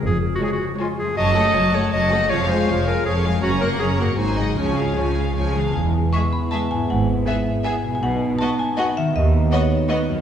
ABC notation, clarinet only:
X:1
M:3/4
L:1/16
Q:1/4=159
K:Db
V:1 name="Clarinet"
A3 G A G3 F2 A2 | e6 d2 e4 | d2 c4 B2 A2 z2 | G2 B2 A2 G2 E4 |
D8- D2 z2 | [K:E] z12 | z12 | z12 |
z12 |]